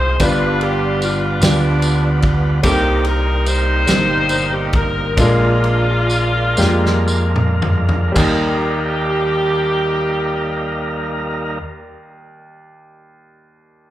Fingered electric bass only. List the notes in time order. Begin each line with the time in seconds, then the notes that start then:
Already playing: C2
0.20 G1
1.42 D2
2.64 C2
3.87 G1
5.17 A#1
6.58 F2
8.16 D#2